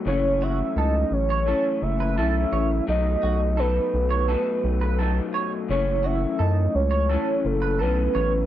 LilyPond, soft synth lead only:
\new Staff \with { instrumentName = "Soft synth lead" } { \time 4/4 \key fis \dorian \tempo 4 = 85 cis''8 e''8 dis''8 cis''4 e''8 e''4 | dis''4 b'2~ b'8 r8 | cis''8 e''8 dis''8 cis''4 a'8 b'4 | }